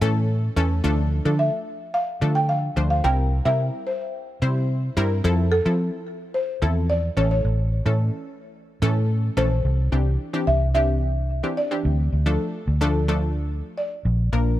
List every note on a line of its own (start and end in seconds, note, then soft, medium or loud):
0.01 0.48 A2 medium
0.01 0.27 E3 loud
0.01 0.27 A3 medium
0.01 0.27 C#4 medium
0.01 0.27 A4 loud
0.56 0.80 E2 medium
0.56 0.69 E3 loud
0.56 0.69 A3 medium
0.56 0.70 C#4 medium
0.56 0.70 A4 loud
0.84 1.19 D2 loud
0.84 1.03 F3 medium
0.84 1.03 A3 medium
0.84 1.03 D4 medium
0.84 1.04 A4 loud
1.25 1.49 D3 medium
1.25 1.70 F3 medium
1.25 1.71 A3 medium
1.25 1.71 D4 medium
1.25 1.71 A4 medium
1.39 1.96 E5 medium
1.94 2.37 F5 loud
2.21 2.68 D3 medium
2.21 2.47 F3 medium
2.21 2.47 A3 medium
2.21 2.48 D4 medium
2.21 2.48 A4 medium
2.35 2.50 G5 medium
2.49 2.89 F5 medium
2.76 3.00 D2 medium
2.76 2.89 F3 medium
2.76 2.90 A3 medium
2.76 2.90 D4 medium
2.76 2.90 C5 medium
2.90 2.97 F5 medium
3.04 3.39 C2 loud
3.04 3.23 G3 medium
3.04 3.24 C4 medium
3.04 3.24 E4 medium
3.04 3.24 A#4 medium
3.04 3.47 G5 loud
3.45 3.69 C3 medium
3.45 3.91 G3 medium
3.45 3.91 C4 medium
3.45 3.91 E4 medium
3.45 3.91 A#4 medium
3.45 3.84 E5 medium
3.87 4.93 C5 medium
4.42 4.88 C3 loud
4.42 4.68 G3 medium
4.42 4.68 C4 medium
4.42 4.68 E4 medium
4.42 4.68 C5 medium
4.97 5.20 G2 medium
4.97 5.10 G3 loud
4.97 5.10 C4 medium
4.97 5.10 E4 medium
4.97 5.10 A#4 loud
5.24 5.59 F2 medium
5.24 5.44 F3 medium
5.24 5.44 C4 medium
5.24 5.44 E4 medium
5.24 5.44 A4 loud
5.52 6.03 A4 loud
5.65 6.11 F3 medium
5.65 5.89 F3 medium
5.65 6.11 C4 medium
5.65 6.11 E4 medium
5.65 6.11 A4 medium
6.34 6.91 C5 medium
6.62 7.09 E2 medium
6.62 6.88 F3 medium
6.62 6.88 C4 medium
6.62 6.88 E4 medium
6.62 6.88 A4 medium
6.90 7.18 D5 loud
7.17 7.40 A1 medium
7.17 7.72 E3 medium
7.17 7.72 A3 medium
7.17 7.72 C#4 medium
7.17 7.72 A4 medium
7.17 7.30 C#5 loud
7.31 9.06 C#5 medium
7.45 7.79 A1 loud
7.86 8.09 A2 medium
7.86 8.31 E3 medium
7.86 8.31 A3 medium
7.86 8.31 C#4 medium
7.86 8.31 A4 medium
8.82 9.29 A2 medium
8.82 9.08 E3 loud
8.82 9.08 A3 medium
8.82 9.08 C#4 medium
8.82 9.08 A4 loud
9.37 9.61 A#1 medium
9.37 9.50 E3 loud
9.37 9.50 A3 medium
9.37 9.50 C#4 medium
9.37 9.50 A4 loud
9.37 10.16 C5 loud
9.65 9.88 C2 loud
9.92 10.16 C2 medium
9.92 10.12 E3 medium
9.92 10.12 C4 medium
9.92 10.12 D4 medium
9.92 10.12 G4 medium
10.33 10.53 E3 medium
10.33 10.53 C4 medium
10.33 10.53 D4 medium
10.33 10.53 G4 medium
10.47 11.40 C2 medium
10.47 10.73 E5 medium
10.75 11.07 E3 medium
10.75 11.07 C4 medium
10.75 11.07 D4 medium
10.75 11.07 G4 medium
10.75 11.60 E5 loud
11.43 11.56 E3 medium
11.43 11.57 C4 medium
11.43 11.57 D4 medium
11.43 11.57 G4 medium
11.57 13.76 D5 medium
11.71 11.85 E3 medium
11.71 11.85 C4 medium
11.71 11.85 D4 medium
11.71 11.85 G4 medium
11.85 12.08 D2 loud
12.12 12.36 D2 medium
12.26 12.52 F3 medium
12.26 12.52 A3 medium
12.26 12.52 D4 medium
12.26 12.52 A4 loud
12.67 13.61 D2 loud
12.81 12.94 F3 loud
12.81 12.94 A3 medium
12.81 12.94 D4 loud
12.81 12.94 A4 loud
13.08 13.60 F3 medium
13.08 13.60 A3 medium
13.08 13.60 D4 medium
13.08 13.61 A4 loud
13.78 14.56 D5 medium
14.05 14.28 A#1 loud
14.32 14.56 A#1 medium
14.32 14.52 F3 medium
14.32 14.52 A#3 medium
14.32 14.52 D4 medium
14.32 14.52 A#4 medium